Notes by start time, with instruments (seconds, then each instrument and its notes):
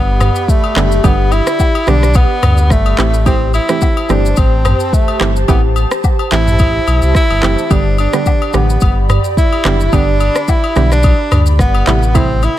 Already playing: sub bass G1, tenor saxophone B3, ambient pad G4 D5 B5
0.20 cross-stick, mid tom, high agogo, shaker
0.35 shaker
0.48 tenor saxophone A3, kick, shaker
0.64 high agogo
0.76 sub bass F#1, synth pluck D3 G3 B3 G4, cross-stick, clap, shaker
0.92 shaker
1.04 sub bass G1, synth pluck D3 G3 B3 G4, tenor saxophone B3, kick, high agogo, shaker
1.32 tenor saxophone E4, high agogo, shaker
1.47 cross-stick, shaker
1.59 kick, low woodblock, shaker
1.75 high agogo
1.87 sub bass B1, synth pluck D3 G3 B3 G4, tenor saxophone D4, cross-stick, shaker
2.03 cross-stick, shaker
2.14 tenor saxophone B3, kick, high agogo, shaker
2.43 sub bass D2, cross-stick, mid tom, high agogo, shaker
2.58 shaker
2.70 sub bass G1, tenor saxophone A3, kick, cross-stick, shaker
2.86 high agogo
2.98 sub bass A1, synth pluck E3 A3 C4 G4, ambient pad G4 C5 A5, cross-stick, clap, shaker
3.14 shaker
3.26 synth pluck E3 A3 C4 G4, tenor saxophone C4, kick, high agogo, shaker
3.54 tenor saxophone E4, high agogo, shaker
3.69 synth pluck E3 A3 C4 G4, cross-stick, shaker
3.81 kick, low woodblock, shaker
3.97 high agogo
4.09 sub bass G1, synth pluck E3 A3 C4 G4, tenor saxophone D4, cross-stick, shaker
4.26 shaker
4.36 sub bass A1, tenor saxophone C4, kick, high agogo, shaker
4.65 cross-stick, mid tom, high agogo, shaker
4.80 shaker
4.93 tenor saxophone A3, kick, shaker
5.08 high agogo
5.20 sub bass G1, synth pluck E3 A3 C4 G4, cross-stick, clap, shaker
5.36 shaker
5.48 sub bass A1, synth pluck E3 A3 C4 G4, tenor saxophone B3, kick, high agogo, shaker
5.76 high agogo, shaker
5.91 cross-stick, shaker
6.04 kick, low woodblock, shaker
6.19 high agogo
6.31 sub bass A1, synth pluck E3 A3 C4 G4, tenor saxophone E4, cross-stick, clap, shaker
6.47 mid tom, shaker
6.59 kick, high agogo, shaker
6.87 sub bass B1, high agogo, shaker
7.02 sub bass C2, shaker
7.15 tenor saxophone E4, kick, cross-stick, shaker
7.30 sub bass G1, high agogo
7.42 sub bass F#1, synth pluck E3 A3 C4 G4, cross-stick, clap, shaker
7.58 shaker
7.70 sub bass G1, synth pluck D3 G3 B3 G4, tenor saxophone D4, ambient pad D5 B5, kick, high agogo, shaker
7.98 tenor saxophone D4, high agogo, shaker
8.13 synth pluck D3 G3 B3 G4, cross-stick, shaker
8.26 kick, low woodblock, shaker
8.42 high agogo
8.53 sub bass A1, synth pluck D3 G3 B3 G4, tenor saxophone B3, cross-stick, shaker
8.70 shaker
8.81 sub bass G1, kick, high agogo, shaker
9.09 cross-stick, mid tom, high agogo, shaker
9.24 shaker
9.37 tenor saxophone E4, kick, shaker
9.53 high agogo
9.65 sub bass F#1, synth pluck D3 G3 B3 G4, cross-stick, clap, shaker
9.80 shaker
9.93 sub bass G1, synth pluck D3 G3 B3 G4, tenor saxophone D4, kick, high agogo, shaker
10.20 high agogo, shaker
10.35 cross-stick, shaker
10.48 tenor saxophone E4, kick, low woodblock, shaker
10.64 high agogo
10.76 sub bass B1, synth pluck D3 G3 B3 G4, cross-stick, shaker
10.92 tenor saxophone D4, cross-stick, shaker
11.03 kick, high agogo, shaker
11.31 sub bass D2, cross-stick, mid tom, high agogo, shaker
11.46 shaker
11.59 sub bass G1, tenor saxophone B3, kick, cross-stick, shaker
11.75 high agogo
11.87 sub bass A1, synth pluck C3 G3 A3 E4, ambient pad A4 G5 C6, cross-stick, clap, shaker
12.03 shaker
12.14 synth pluck C3 G3 A3 E4, tenor saxophone C4, kick, high agogo, shaker
12.43 tenor saxophone E4, high agogo, shaker